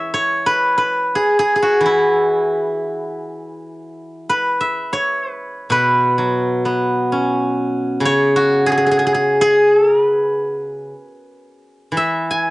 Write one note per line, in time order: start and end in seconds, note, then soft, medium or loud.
0.00 1.34 E3 medium
0.00 0.13 C#5 medium
0.00 1.56 E5 medium
0.14 2.05 C#5 medium
0.46 0.77 B4 medium
0.78 2.82 B4 medium
1.15 1.39 G#4 medium
1.39 1.55 G#4 medium
1.56 3.82 G#4 medium
1.62 4.06 F#4 medium
1.81 4.76 E3 medium
1.86 4.47 E4 medium
4.29 5.32 B4 medium
4.61 6.33 E5 medium
4.93 5.32 C#5 medium
5.32 5.72 B4 medium
5.70 8.03 B2 medium
5.70 7.76 B4 medium
6.18 8.04 F#3 soft
6.65 8.51 B3 soft
7.12 8.98 C#4 soft
8.00 10.91 C#3 medium
8.05 9.96 C#5 loud
8.36 10.79 F#4 medium
8.66 8.71 G#4 loud
8.72 8.77 G#4 medium
8.78 8.86 G#4 medium
8.86 8.91 G#4 medium
8.91 8.98 G#4 medium
8.99 9.06 G#4 medium
9.06 9.14 G#4 medium
9.14 9.41 G#4 medium
9.41 9.72 G#4 loud
9.72 9.87 A4 loud
9.87 10.03 A#4 loud
10.03 11.46 B4 loud
11.92 12.50 E3 medium
11.97 12.50 E5 medium
12.31 12.50 G#5 medium